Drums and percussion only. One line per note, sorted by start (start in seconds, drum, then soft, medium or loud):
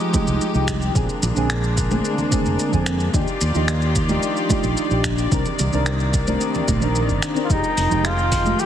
0.00 shaker soft
0.14 kick loud
0.14 high conga medium
0.14 low conga medium
0.14 shaker medium
0.27 shaker soft
0.41 shaker soft
0.55 shaker soft
0.68 finger snap medium
0.68 kick medium
0.68 shaker medium
0.82 shaker soft
0.95 kick loud
0.95 shaker soft
1.09 shaker soft
1.23 low conga medium
1.23 shaker medium
1.36 shaker soft
1.50 finger snap medium
1.50 shaker soft
1.64 shaker soft
1.77 kick loud
1.77 shaker medium
1.91 high conga medium
1.91 shaker soft
2.05 shaker soft
2.18 low conga medium
2.18 shaker soft
2.32 kick loud
2.32 high conga medium
2.32 shaker medium
2.46 shaker soft
2.59 shaker soft
2.73 kick medium
2.73 shaker soft
2.86 finger snap medium
2.86 shaker medium
3.00 shaker soft
3.14 kick loud
3.14 shaker soft
3.28 shaker soft
3.41 shaker medium
3.55 shaker soft
3.68 finger snap medium
3.68 shaker soft
3.82 shaker soft
3.95 kick loud
3.95 shaker medium
4.09 high conga medium
4.09 shaker soft
4.23 shaker soft
4.37 shaker soft
4.49 kick loud
4.49 high conga loud
4.49 low conga medium
4.49 shaker medium
4.64 shaker soft
4.77 shaker soft
4.91 shaker soft
5.04 finger snap medium
5.04 kick medium
5.04 shaker medium
5.18 shaker soft
5.32 kick loud
5.32 shaker soft
5.45 low conga medium
5.45 shaker soft
5.59 low conga medium
5.59 shaker medium
5.73 shaker soft
5.86 finger snap medium
5.86 shaker soft
6.00 shaker soft
6.13 kick loud
6.13 shaker medium
6.27 high conga medium
6.27 shaker soft
6.41 shaker soft
6.54 low conga medium
6.54 shaker soft
6.68 kick loud
6.68 high conga medium
6.68 shaker medium
6.82 shaker soft
6.95 shaker soft
7.09 kick medium
7.09 shaker soft
7.22 finger snap medium
7.22 shaker medium
7.36 shaker soft
7.50 kick loud
7.50 shaker soft
7.64 shaker soft
7.77 open hi-hat medium
7.77 shaker medium
7.91 shaker soft
8.05 finger snap medium
8.05 shaker soft
8.18 shaker soft
8.32 kick loud
8.32 open hi-hat medium
8.32 shaker medium
8.46 high conga medium
8.46 shaker soft
8.59 shaker soft